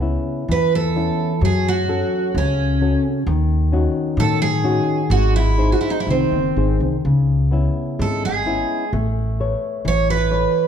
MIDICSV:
0, 0, Header, 1, 4, 480
1, 0, Start_track
1, 0, Key_signature, 4, "minor"
1, 0, Tempo, 923077
1, 738, Time_signature, 2, 2, 24, 8
1, 2652, Tempo, 964630
1, 4092, Tempo, 924499
1, 5484, End_track
2, 0, Start_track
2, 0, Title_t, "Twelve-string acoustic guitar"
2, 0, Program_c, 0, 25
2, 267, Note_on_c, 0, 71, 95
2, 386, Note_off_c, 0, 71, 0
2, 391, Note_on_c, 0, 69, 83
2, 752, Note_off_c, 0, 69, 0
2, 754, Note_on_c, 0, 68, 87
2, 869, Note_off_c, 0, 68, 0
2, 876, Note_on_c, 0, 66, 88
2, 1234, Note_off_c, 0, 66, 0
2, 1236, Note_on_c, 0, 61, 74
2, 1568, Note_off_c, 0, 61, 0
2, 2183, Note_on_c, 0, 69, 106
2, 2295, Note_off_c, 0, 69, 0
2, 2297, Note_on_c, 0, 68, 104
2, 2657, Note_off_c, 0, 68, 0
2, 2659, Note_on_c, 0, 66, 98
2, 2777, Note_off_c, 0, 66, 0
2, 2781, Note_on_c, 0, 64, 85
2, 2958, Note_off_c, 0, 64, 0
2, 2962, Note_on_c, 0, 66, 68
2, 3001, Note_off_c, 0, 66, 0
2, 3004, Note_on_c, 0, 64, 68
2, 3046, Note_off_c, 0, 64, 0
2, 3052, Note_on_c, 0, 63, 71
2, 3094, Note_off_c, 0, 63, 0
2, 3101, Note_on_c, 0, 64, 68
2, 3142, Note_off_c, 0, 64, 0
2, 3152, Note_on_c, 0, 60, 65
2, 3491, Note_off_c, 0, 60, 0
2, 4103, Note_on_c, 0, 69, 87
2, 4213, Note_off_c, 0, 69, 0
2, 4226, Note_on_c, 0, 68, 86
2, 4564, Note_off_c, 0, 68, 0
2, 5070, Note_on_c, 0, 73, 101
2, 5185, Note_off_c, 0, 73, 0
2, 5187, Note_on_c, 0, 71, 94
2, 5484, Note_off_c, 0, 71, 0
2, 5484, End_track
3, 0, Start_track
3, 0, Title_t, "Nylon-string guitar"
3, 0, Program_c, 1, 24
3, 0, Note_on_c, 1, 49, 57
3, 2, Note_on_c, 1, 59, 45
3, 8, Note_on_c, 1, 61, 41
3, 10, Note_on_c, 1, 64, 53
3, 240, Note_off_c, 1, 49, 0
3, 254, Note_on_c, 1, 52, 62
3, 395, Note_off_c, 1, 59, 0
3, 398, Note_off_c, 1, 61, 0
3, 399, Note_off_c, 1, 64, 0
3, 499, Note_on_c, 1, 61, 42
3, 500, Note_on_c, 1, 59, 44
3, 502, Note_on_c, 1, 64, 51
3, 690, Note_off_c, 1, 59, 0
3, 691, Note_off_c, 1, 61, 0
3, 691, Note_off_c, 1, 64, 0
3, 722, Note_off_c, 1, 52, 0
3, 740, Note_on_c, 1, 54, 60
3, 980, Note_on_c, 1, 61, 48
3, 983, Note_on_c, 1, 66, 46
3, 985, Note_on_c, 1, 69, 56
3, 1208, Note_off_c, 1, 54, 0
3, 1224, Note_on_c, 1, 49, 65
3, 1367, Note_off_c, 1, 61, 0
3, 1368, Note_off_c, 1, 66, 0
3, 1370, Note_off_c, 1, 69, 0
3, 1463, Note_on_c, 1, 61, 49
3, 1467, Note_on_c, 1, 66, 46
3, 1467, Note_on_c, 1, 69, 55
3, 1652, Note_off_c, 1, 61, 0
3, 1654, Note_off_c, 1, 69, 0
3, 1655, Note_off_c, 1, 66, 0
3, 1686, Note_off_c, 1, 49, 0
3, 1702, Note_on_c, 1, 51, 73
3, 1936, Note_on_c, 1, 61, 54
3, 1940, Note_on_c, 1, 63, 49
3, 1942, Note_on_c, 1, 66, 57
3, 2159, Note_off_c, 1, 51, 0
3, 2178, Note_on_c, 1, 51, 72
3, 2317, Note_off_c, 1, 61, 0
3, 2319, Note_off_c, 1, 63, 0
3, 2320, Note_off_c, 1, 66, 0
3, 2412, Note_on_c, 1, 61, 52
3, 2415, Note_on_c, 1, 63, 44
3, 2418, Note_on_c, 1, 66, 56
3, 2606, Note_off_c, 1, 61, 0
3, 2607, Note_off_c, 1, 63, 0
3, 2609, Note_off_c, 1, 66, 0
3, 2642, Note_off_c, 1, 51, 0
3, 2661, Note_on_c, 1, 56, 62
3, 2891, Note_on_c, 1, 63, 47
3, 2893, Note_on_c, 1, 68, 46
3, 2896, Note_on_c, 1, 72, 53
3, 3126, Note_off_c, 1, 56, 0
3, 3139, Note_on_c, 1, 51, 61
3, 3285, Note_off_c, 1, 63, 0
3, 3285, Note_off_c, 1, 68, 0
3, 3286, Note_off_c, 1, 72, 0
3, 3384, Note_on_c, 1, 63, 39
3, 3386, Note_on_c, 1, 68, 38
3, 3388, Note_on_c, 1, 72, 49
3, 3575, Note_off_c, 1, 63, 0
3, 3576, Note_off_c, 1, 68, 0
3, 3577, Note_off_c, 1, 72, 0
3, 3609, Note_off_c, 1, 51, 0
3, 3624, Note_on_c, 1, 49, 61
3, 3852, Note_on_c, 1, 59, 44
3, 3856, Note_on_c, 1, 61, 42
3, 3860, Note_on_c, 1, 64, 55
3, 4080, Note_off_c, 1, 49, 0
3, 4091, Note_on_c, 1, 56, 62
3, 4236, Note_off_c, 1, 59, 0
3, 4240, Note_off_c, 1, 61, 0
3, 4240, Note_off_c, 1, 64, 0
3, 4335, Note_on_c, 1, 59, 45
3, 4335, Note_on_c, 1, 61, 41
3, 4337, Note_on_c, 1, 64, 52
3, 4530, Note_off_c, 1, 59, 0
3, 4531, Note_off_c, 1, 61, 0
3, 4531, Note_off_c, 1, 64, 0
3, 4564, Note_off_c, 1, 56, 0
3, 4582, Note_on_c, 1, 57, 69
3, 4822, Note_on_c, 1, 69, 47
3, 4825, Note_on_c, 1, 71, 43
3, 4826, Note_on_c, 1, 73, 55
3, 5045, Note_off_c, 1, 57, 0
3, 5056, Note_on_c, 1, 52, 69
3, 5202, Note_off_c, 1, 69, 0
3, 5203, Note_off_c, 1, 71, 0
3, 5203, Note_off_c, 1, 73, 0
3, 5292, Note_on_c, 1, 69, 49
3, 5295, Note_on_c, 1, 71, 46
3, 5297, Note_on_c, 1, 73, 56
3, 5484, Note_off_c, 1, 52, 0
3, 5484, Note_off_c, 1, 69, 0
3, 5484, Note_off_c, 1, 71, 0
3, 5484, Note_off_c, 1, 73, 0
3, 5484, End_track
4, 0, Start_track
4, 0, Title_t, "Upright bass"
4, 0, Program_c, 2, 32
4, 0, Note_on_c, 2, 37, 77
4, 80, Note_off_c, 2, 37, 0
4, 252, Note_on_c, 2, 40, 80
4, 566, Note_off_c, 2, 40, 0
4, 735, Note_on_c, 2, 42, 90
4, 1050, Note_off_c, 2, 42, 0
4, 1220, Note_on_c, 2, 37, 90
4, 1531, Note_off_c, 2, 37, 0
4, 1698, Note_on_c, 2, 39, 101
4, 2005, Note_off_c, 2, 39, 0
4, 2168, Note_on_c, 2, 45, 94
4, 2482, Note_off_c, 2, 45, 0
4, 2652, Note_on_c, 2, 32, 99
4, 2966, Note_off_c, 2, 32, 0
4, 3134, Note_on_c, 2, 36, 81
4, 3215, Note_off_c, 2, 36, 0
4, 3258, Note_on_c, 2, 30, 71
4, 3369, Note_off_c, 2, 30, 0
4, 3381, Note_on_c, 2, 32, 71
4, 3490, Note_off_c, 2, 32, 0
4, 3500, Note_on_c, 2, 36, 73
4, 3608, Note_off_c, 2, 36, 0
4, 3621, Note_on_c, 2, 37, 83
4, 3928, Note_off_c, 2, 37, 0
4, 4092, Note_on_c, 2, 32, 83
4, 4409, Note_off_c, 2, 32, 0
4, 4577, Note_on_c, 2, 33, 89
4, 4888, Note_off_c, 2, 33, 0
4, 5055, Note_on_c, 2, 33, 84
4, 5365, Note_off_c, 2, 33, 0
4, 5484, End_track
0, 0, End_of_file